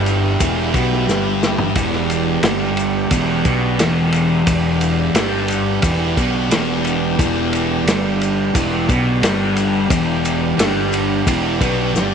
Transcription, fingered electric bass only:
Already playing: G1
0.40 E1
0.74 B1
1.07 G1
1.75 E1
2.42 G1
3.11 E1
3.45 B1
3.79 E1
4.46 E1
5.14 G1
5.83 E1
6.17 B1
6.50 E1
7.19 E1
7.86 G1
8.55 E1
8.88 B1
9.21 G1
9.90 E1
10.57 G1
11.26 E1
11.61 B1
11.93 G1

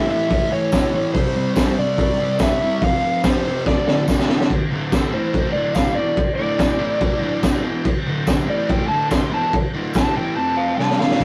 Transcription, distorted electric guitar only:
0.08 A2 E3 A3
0.28 A2 E3 A3
0.50 A2 E3 A3
0.72 A2 E3 A3
0.92 A2 E3 A3
1.13 C3 G3 C4
1.35 C3 G3 C4
1.56 C3 G3 C4
1.77 C3 G3 C4
1.98 C3 G3 C4
2.20 C3 G3 C4
2.40 C3 G3 C4
2.61 C3 G3 C4
2.83 F2 C3 F3
3.02 F2 C3 F3
3.23 F2 C3 F3
3.45 F2 C3 F3
3.66 D2 A2 D3
3.88 D2 A2 D3
4.07 D2 A2 D3
4.29 D2 A2 D3
4.71 D2 A2 D3
5.12 A2 E3 A3
5.54 D2 A2 D3
5.96 E2 B2 E3
6.37 D2 A2 D3
6.79 A2 E3 A3
7.21 D2 A2 D3
7.64 E2 B2 E3
8.06 D2 A2 D3
8.47 A2 E3 A3
8.89 D2 A2 D3
9.32 E2 B2 E3
9.74 D2 A2 D3
10.15 A2 E3 A3
10.36 F2 C3 F3
10.77 C3 G3 C4
10.99 D2 A2 D3
11.20 D2

